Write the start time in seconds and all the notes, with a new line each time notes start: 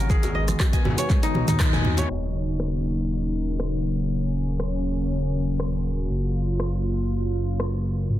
Already playing: C#4 F#4 A#4 C#5
0.00 G#1
0.10 D#3 G#3 B3 F#4 G#4, kick, high conga, shaker
0.23 closed hi-hat, djembe slap, djembe tone, djembe bass, shaker
0.35 D#5
0.48 cross-stick, closed hi-hat, high conga, shaker
0.60 kick, cross-stick, clap, djembe bass, shaker
0.73 G#5, kick, closed hi-hat, shaker
0.85 G#1, mid tom, djembe slap, djembe tone, high conga, low conga
0.98 C#5, closed hi-hat, shaker
1.10 G#2, kick, clap, high tom, shaker
1.23 D#4, closed hi-hat, high tom, shaker
1.35 B1, djembe slap, high conga
1.48 D#2 D#4, closed hi-hat, mid tom, shaker
1.60 kick, cross-stick, clap, mid tom, shaker
1.73 G#5, mid tom, shaker
1.85 mid tom, high conga, djembe tone
1.97 C#5, closed hi-hat, mid tom, djembe slap, shaker
2.09 D#1 C#3 F#3 A#3 D#4
2.60 cross-stick
3.60 cross-stick
4.10 C#4
4.60 cross-stick
5.60 cross-stick
6.10 F#1 F4
6.60 cross-stick
7.60 cross-stick
8.10 G#1 D#3 G#3 B3 F#4